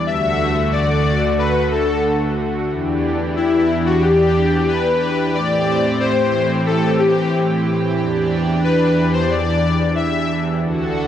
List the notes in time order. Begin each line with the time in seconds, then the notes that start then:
0.06 D2 D3 A3 F#4 E5
0.72 D5
1.38 B4
1.71 A4
2.70 E2 E3 D4 G4
3.36 E4
3.86 F#4
4.02 G4
4.68 B4
5.34 A2 C4 D5
6.00 C5
6.66 A4
6.99 G4
7.98 E2 D4
8.64 B4
9.13 C5
9.29 D5
9.95 E5
10.61 D2 D3 F#4 A4